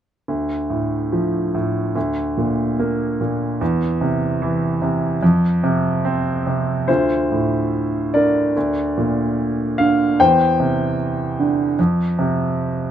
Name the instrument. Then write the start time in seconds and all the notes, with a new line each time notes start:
grand piano
0.28 D2
0.70 A2
1.12 F3
1.54 A2
1.95 D2
2.37 A#2
2.79 A#3
3.21 A#2
3.61 E2
4.01 C3
4.42 E3
4.82 C3
5.23 F2
5.64 C3
6.05 C4
6.47 C3
6.88 D2 F4 C5
7.32 A2
8.14 D3 A#4 D5
8.57 D2
8.97 A#2
9.78 D3 F5
10.20 E2 C5 G5
10.60 C3
11.40 D3
11.79 F2
12.19 C3